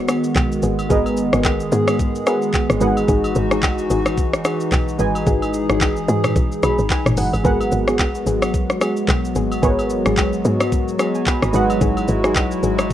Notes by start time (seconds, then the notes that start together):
Already playing: D#3 G#3 B3 F#4 G#4 A#4 B4 F#5
0.08 B3 F#4 G#4, cross-stick, high agogo, shaker
0.24 shaker
0.36 B1, kick, clap, high agogo, low woodblock, shaker
0.52 shaker
0.63 G#1 B3 F#4 G#4, shaker
0.79 high agogo, shaker
0.89 G#1 G#3 B3 F#4 G#4 A#4 B4 D#5, kick, shaker
1.06 high agogo, shaker
1.17 shaker
1.33 G#1 B3 F#4 G#4, cross-stick, shaker
1.45 kick, clap, high agogo, low woodblock, shaker
1.60 shaker
1.72 G#2 B3 F#4 G#4, shaker
1.87 cross-stick, high agogo, shaker
1.99 kick, shaker
2.15 shaker
2.26 G#3 B3 F#4 G#4 A#4 B4 F#5, cross-stick, high agogo, shaker
2.42 shaker
2.54 kick, clap, high agogo, low woodblock, shaker
2.70 G#1, cross-stick, shaker
2.80 G#1 E3 G#3 D#4 F#4 G#4 B4 D#5 F#5, shaker
2.87 G#4
2.97 high agogo, shaker
3.08 G#1 D#4 F#4 G#4, kick, shaker
3.24 high agogo, shaker
3.35 G#1, shaker
3.51 D#4 F#4 G#4, cross-stick, shaker
3.63 kick, clap, high agogo, low woodblock, shaker
3.78 shaker
3.90 G#1 D#4 F#4 G#4, shaker
4.06 cross-stick, high agogo, shaker
4.18 kick, shaker
4.33 cross-stick, shaker
4.45 D#4 F#4 G#4, cross-stick, high agogo, shaker
4.60 shaker
4.72 B1, kick, clap, high agogo, low woodblock, shaker
4.88 shaker
4.98 G#1 G#3 D#4 F#4 G#4 B4 D#5 G#5, shaker
5.15 high agogo, shaker
5.26 G#1 D#4 F#4 G#4, kick, shaker
5.42 high agogo, shaker
5.54 shaker
5.70 G#1 D#4 F#4 G#4, cross-stick, shaker
5.81 kick, clap, high agogo, low woodblock, shaker
5.97 shaker
6.08 G#2 D#4 F#4 G#4, shaker
6.24 cross-stick, mid tom, high agogo, shaker
6.36 B1, kick, shaker
6.52 shaker
6.63 B1 D#4 F#4 G#4 B5, cross-stick, high agogo, shaker
6.79 G#1, shaker
6.90 G#5, kick, clap, high agogo, low woodblock, shaker
7.06 G#1, cross-stick, mid tom, shaker
7.17 F#1 D#4 F#4 G#4 F#5, open hi-hat, shaker
7.33 G#1, high agogo, shaker
7.44 G#1 F#3 G#3 B3 F#4 G#4 A#4 B4 F#5, kick, shaker
7.61 high agogo, shaker
7.72 G#1, shaker
7.88 B3 F#4 G#4, cross-stick, shaker
7.99 kick, clap, high agogo, low woodblock, shaker
8.15 shaker
8.26 G#1 B3 F#4 G#4, shaker
8.42 cross-stick, high agogo, shaker
8.54 kick, shaker
8.70 cross-stick, shaker
8.81 B3 F#4 G#4, cross-stick, high agogo, shaker
8.97 shaker
9.08 B1, kick, clap, high agogo, low woodblock, shaker
9.25 shaker
9.35 G#1 B3 F#4 G#4, shaker
9.52 high agogo, shaker
9.62 G#1 G#3 B3 F#4 G#4 A#4 B4 C#5, kick, shaker
9.79 high agogo, shaker
9.90 shaker
10.06 G#1 B3 F#4 G#4, cross-stick, shaker
10.17 kick, clap, high agogo, low woodblock, shaker
10.33 shaker
10.45 G#2 B3 F#4 G#4, shaker
10.60 cross-stick, high agogo, shaker
10.72 kick, shaker
10.88 shaker
10.99 B3 F#4 G#4, cross-stick, high agogo, shaker
11.15 G#5, shaker
11.27 G#5 B5, kick, clap, high agogo, low woodblock, shaker
11.42 G#1 B5 D#6, cross-stick, shaker
11.53 G#1 G#3 D#4 E4 F#4 G#4 B4 D#5 F#5, shaker
11.70 high agogo, shaker
11.81 G#1 D#4 F#4 G#4, kick, shaker
11.97 high agogo, shaker
12.08 G#1, shaker
12.24 D#4 F#4 G#4, cross-stick, shaker
12.36 kick, clap, high agogo, low woodblock, shaker
12.51 shaker
12.63 G#1 D#4 F#4 G#4, shaker
12.78 cross-stick, high agogo, shaker